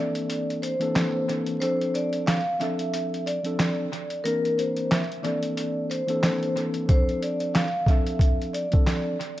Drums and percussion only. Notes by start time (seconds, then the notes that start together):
0.15 closed hi-hat
0.30 closed hi-hat
0.50 closed hi-hat
0.63 closed hi-hat
0.81 closed hi-hat
0.96 snare, clap, closed hi-hat
1.29 closed hi-hat
1.46 closed hi-hat
1.62 closed hi-hat
1.81 closed hi-hat
1.95 closed hi-hat
2.13 closed hi-hat
2.28 snare, clap, closed hi-hat
2.61 closed hi-hat
2.79 closed hi-hat
2.94 closed hi-hat
3.14 closed hi-hat
3.27 closed hi-hat
3.45 closed hi-hat
3.60 snare, clap, closed hi-hat
3.93 closed hi-hat
4.10 closed hi-hat
4.25 closed hi-hat
4.45 closed hi-hat
4.59 closed hi-hat
4.77 closed hi-hat
4.92 snare, clap, closed hi-hat
5.12 closed hi-hat
5.25 closed hi-hat
5.43 closed hi-hat
5.57 closed hi-hat
5.91 closed hi-hat
6.08 closed hi-hat
6.23 snare, clap, closed hi-hat
6.43 closed hi-hat
6.57 closed hi-hat
6.74 closed hi-hat
6.89 kick, closed hi-hat
7.09 closed hi-hat
7.23 closed hi-hat
7.40 closed hi-hat
7.55 snare, clap, closed hi-hat
7.86 kick, closed hi-hat
8.06 closed hi-hat
8.19 kick, closed hi-hat
8.42 closed hi-hat
8.54 closed hi-hat
8.72 kick, closed hi-hat
8.87 snare, clap, closed hi-hat
9.21 closed hi-hat